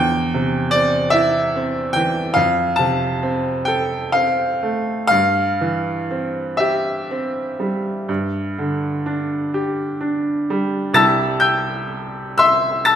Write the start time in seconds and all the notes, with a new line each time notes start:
Already playing: E2 G5
0.34 C3
0.71 C4 D5
1.10 E4 E5
1.56 C4
1.93 E3 G5
2.34 F2 F5
2.76 C3 A5
3.23 C4
3.65 A4 G5
4.12 C4 F5
4.63 A3
5.07 G2 F5
5.61 E3
6.11 C4
6.57 G4 E5
7.11 C4
7.60 G3
8.09 G2
8.58 D3
9.06 D4
9.54 G4
10.01 D4
10.50 G3
10.94 C2 G3 E4 G4 A5 E6 A6
11.40 G5 E6 G6
12.38 E5 C6 E6
12.85 A5 E6 A6